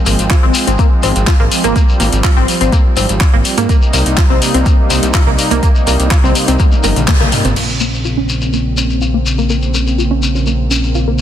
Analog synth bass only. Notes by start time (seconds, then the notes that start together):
0.06 G#1
0.19 G#1
0.43 G#1
0.67 G#1
1.03 G#1
1.16 G#1
1.40 G#1
1.64 G#1
2.00 G#1
2.13 G#1
2.37 G#1
2.61 G#1
2.97 G#1
3.09 G#1
3.33 G#1
3.58 G#2
3.93 C2
4.06 C2
4.30 C2
4.54 C2
4.90 C2
5.03 C2
5.27 C2
5.51 C2
5.87 C2
6.00 C2
6.24 C2
6.48 C2
6.84 G1
6.96 A#1
7.21 C2
7.45 G1
7.56 A#1